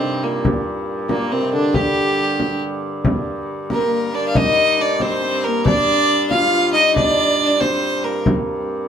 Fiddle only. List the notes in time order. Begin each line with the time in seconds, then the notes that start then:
Already playing: C4
0.23 A#3
1.10 A#3
1.32 C4
1.54 D4
1.75 G4
3.72 A#4
4.15 D5
4.28 F5
4.36 D#5
4.81 D5
5.02 C5
5.44 A#4
5.66 D5
6.30 F5
6.73 D#5
6.96 D5
7.61 C5
8.04 A#4